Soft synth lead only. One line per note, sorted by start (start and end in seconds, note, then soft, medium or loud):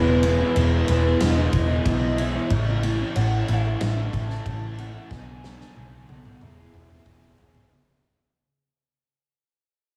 0.00 1.22 B4 loud
1.20 1.84 D#5 loud
1.85 2.20 D#5 loud
2.19 2.53 E5 loud
2.52 3.17 C#5 medium
3.16 3.50 F#5 loud
3.48 4.15 E5 loud
4.14 4.80 A5 loud
4.79 5.09 F#5 loud
5.09 6.10 G#5 loud
6.09 6.44 F#5 loud
6.43 7.39 E5 loud